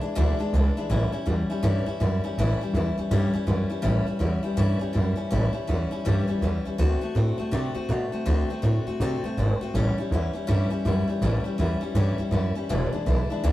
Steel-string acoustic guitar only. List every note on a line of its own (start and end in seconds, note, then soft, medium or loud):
0.01 0.15 E3 soft
0.01 0.15 G#3 medium
0.01 0.15 D4 medium
0.01 0.15 E4 medium
0.15 0.39 E2 medium
0.15 0.39 B2 medium
0.15 0.39 E3 loud
0.15 0.39 G#3 loud
0.15 0.38 D4 loud
0.15 0.38 E4 medium
0.39 0.52 E3 medium
0.39 0.53 G#3 medium
0.39 0.53 D4 medium
0.39 0.53 E4 medium
0.54 0.76 E3 medium
0.54 0.77 G#3 medium
0.54 0.76 D4 medium
0.54 0.76 E4 medium
0.77 0.89 E3 medium
0.77 0.90 G#3 medium
0.77 0.90 D4 medium
0.77 0.90 E4 medium
0.90 1.13 A2 medium
0.90 1.13 E3 medium
0.90 1.13 G3 medium
0.90 1.12 C#4 medium
0.90 1.11 E4 medium
1.12 1.25 G3 soft
1.12 1.25 C#4 medium
1.12 1.26 E4 medium
1.26 1.49 E3 medium
1.26 1.49 G3 medium
1.26 1.50 C#4 medium
1.26 1.49 E4 medium
1.50 1.62 G3 medium
1.50 1.62 C#4 medium
1.50 1.63 E4 medium
1.63 1.86 A2 medium
1.63 1.86 E3 medium
1.63 1.86 G3 medium
1.63 1.86 C#4 medium
1.63 1.85 E4 loud
1.86 1.99 G3 medium
1.86 2.00 C#4 medium
1.86 2.00 E4 medium
2.00 2.23 E3 medium
2.00 2.23 G3 medium
2.00 2.23 C#4 medium
2.00 2.23 E4 medium
2.24 2.38 G3 soft
2.24 2.37 C#4 medium
2.24 2.37 E4 medium
2.39 2.61 A2 medium
2.39 2.61 E3 medium
2.39 2.61 G3 medium
2.39 2.61 C#4 medium
2.39 2.60 E4 loud
2.61 2.74 G3 soft
2.61 2.75 C#4 medium
2.61 2.74 E4 medium
2.75 2.97 E3 medium
2.75 2.98 G3 medium
2.75 2.97 C#4 medium
2.75 2.96 E4 medium
2.98 3.10 G3 soft
2.98 3.10 C#4 soft
2.98 3.11 E4 medium
3.11 3.34 A2 medium
3.11 3.34 E3 medium
3.11 3.34 G3 loud
3.11 3.33 C#4 loud
3.11 3.32 E4 loud
3.33 3.46 G3 medium
3.33 3.47 C#4 medium
3.33 3.47 E4 medium
3.47 3.70 E3 medium
3.47 3.70 G3 medium
3.47 3.69 C#4 medium
3.47 3.68 E4 medium
3.70 3.81 G3 soft
3.70 3.82 C#4 medium
3.70 3.82 E4 medium
3.82 4.06 A2 medium
3.82 4.06 E3 medium
3.82 4.06 G3 medium
3.82 4.06 C#4 loud
3.82 4.05 E4 medium
4.07 4.19 G3 soft
4.07 4.19 C#4 medium
4.07 4.20 E4 medium
4.19 4.43 E3 medium
4.19 4.44 G3 medium
4.19 4.43 C#4 medium
4.19 4.42 E4 medium
4.43 4.56 G3 soft
4.43 4.56 C#4 medium
4.43 4.57 E4 medium
4.57 4.80 A2 medium
4.57 4.80 E3 medium
4.57 4.80 G3 medium
4.57 4.80 C#4 loud
4.57 4.78 E4 loud
4.79 4.92 G3 medium
4.79 4.93 C#4 medium
4.79 4.94 E4 medium
4.93 5.17 E3 medium
4.93 5.16 G3 medium
4.93 5.16 C#4 medium
4.93 5.14 E4 medium
5.16 5.30 G3 soft
5.16 5.30 C#4 medium
5.16 5.30 E4 medium
5.31 5.54 A2 medium
5.31 5.54 E3 medium
5.31 5.53 G3 medium
5.31 5.53 C#4 medium
5.31 5.52 E4 medium
5.53 5.67 G3 soft
5.53 5.68 C#4 soft
5.53 5.67 E4 medium
5.67 5.91 E3 medium
5.67 5.91 G3 medium
5.67 5.91 C#4 medium
5.67 5.90 E4 medium
5.91 6.04 G3 soft
5.91 6.05 C#4 medium
5.91 6.05 E4 medium
6.05 6.28 A2 medium
6.05 6.29 E3 medium
6.05 6.28 G3 medium
6.05 6.27 C#4 medium
6.05 6.26 E4 medium
6.28 6.42 G3 medium
6.28 6.42 C#4 medium
6.28 6.42 E4 medium
6.42 6.65 E3 medium
6.42 6.66 G3 medium
6.42 6.65 C#4 medium
6.42 6.64 E4 medium
6.65 6.78 G3 soft
6.65 6.79 C#4 medium
6.65 6.79 E4 medium
6.78 7.02 D3 medium
6.78 7.02 A3 medium
6.78 7.01 C4 loud
6.78 7.00 F#4 loud
7.01 7.15 A3 soft
7.01 7.15 C4 soft
7.01 7.15 F#4 medium
7.15 7.38 D3 medium
7.15 7.39 A3 medium
7.15 7.38 C4 medium
7.15 7.37 F#4 medium
7.38 7.51 A3 medium
7.38 7.52 C4 medium
7.38 7.52 F#4 medium
7.51 7.75 D3 medium
7.51 7.75 A3 medium
7.51 7.74 C4 medium
7.51 7.73 F#4 loud
7.74 7.88 A3 soft
7.74 7.89 C4 medium
7.74 7.89 F#4 medium
7.89 8.12 D3 medium
7.89 8.12 A3 medium
7.89 8.12 C4 medium
7.89 8.11 F#4 medium
8.12 8.25 A3 soft
8.12 8.25 C4 medium
8.12 8.25 F#4 medium
8.26 8.49 D3 medium
8.26 8.49 A3 medium
8.26 8.49 C4 medium
8.26 8.49 F#4 medium
8.50 8.62 A3 soft
8.50 8.62 C4 medium
8.50 8.63 F#4 medium
8.62 8.86 D3 medium
8.62 8.86 A3 medium
8.62 8.86 C4 medium
8.62 8.86 F#4 medium
8.87 9.00 A3 soft
8.87 9.00 C4 medium
8.87 9.00 F#4 medium
9.01 9.24 D3 medium
9.01 9.24 A3 medium
9.01 9.24 C4 loud
9.01 9.23 F#4 loud
9.24 9.37 A3 soft
9.24 9.38 C4 medium
9.24 9.37 F#4 medium
9.37 9.60 D3 medium
9.37 9.61 A3 medium
9.37 9.61 C4 medium
9.37 9.60 F#4 medium
9.61 9.75 A3 soft
9.61 9.75 C4 medium
9.61 9.74 F#4 medium
9.75 9.98 A2 medium
9.75 9.98 E3 medium
9.75 9.98 G3 medium
9.75 9.98 C#4 loud
9.75 9.97 E4 medium
9.98 10.11 G3 soft
9.98 10.12 C#4 soft
9.98 10.11 E4 medium
10.12 10.35 E3 medium
10.12 10.34 G3 medium
10.12 10.33 C#4 medium
10.12 10.32 E4 medium
10.33 10.46 G3 soft
10.33 10.47 C#4 medium
10.33 10.47 E4 medium
10.47 10.71 A2 medium
10.47 10.71 E3 medium
10.47 10.71 G3 medium
10.47 10.70 C#4 medium
10.47 10.69 E4 loud
10.70 10.84 G3 medium
10.70 10.85 C#4 medium
10.70 10.84 E4 medium
10.85 11.08 E3 medium
10.85 11.08 G3 medium
10.85 11.08 C#4 medium
10.85 11.06 E4 medium
11.08 11.21 G3 soft
11.08 11.21 C#4 medium
11.08 11.21 E4 medium
11.22 11.45 A2 medium
11.22 11.45 E3 medium
11.22 11.45 G3 medium
11.22 11.44 C#4 medium
11.22 11.43 E4 medium
11.44 11.57 G3 soft
11.44 11.58 C#4 medium
11.44 11.58 E4 medium
11.58 11.81 E3 medium
11.58 11.82 G3 medium
11.58 11.81 C#4 medium
11.58 11.80 E4 medium
11.81 11.95 G3 medium
11.81 11.95 C#4 soft
11.81 11.95 E4 medium
11.95 12.18 A2 medium
11.95 12.19 E3 medium
11.95 12.19 G3 medium
11.95 12.18 C#4 loud
11.95 12.17 E4 loud
12.18 12.31 G3 medium
12.18 12.31 C#4 medium
12.18 12.32 E4 medium
12.31 12.55 E3 medium
12.31 12.55 G3 medium
12.31 12.55 C#4 medium
12.31 12.54 E4 medium
12.55 12.70 G3 soft
12.55 12.69 C#4 medium
12.55 12.69 E4 medium
12.69 12.92 E2 medium
12.69 12.93 B2 medium
12.69 12.93 E3 medium
12.69 12.92 G#3 loud
12.69 12.92 D4 medium
12.69 12.91 E4 loud
12.92 13.05 E3 soft
12.92 13.06 G#3 medium
12.92 13.06 D4 medium
12.92 13.06 E4 medium
13.06 13.29 E3 medium
13.06 13.30 G#3 medium
13.06 13.30 D4 medium
13.06 13.29 E4 medium
13.30 13.42 E3 soft
13.30 13.43 G#3 medium
13.30 13.43 D4 medium
13.30 13.43 E4 medium
13.44 13.52 E2 medium
13.44 13.52 B2 medium
13.44 13.52 E3 medium
13.44 13.52 G#3 medium
13.44 13.52 D4 medium
13.44 13.52 E4 loud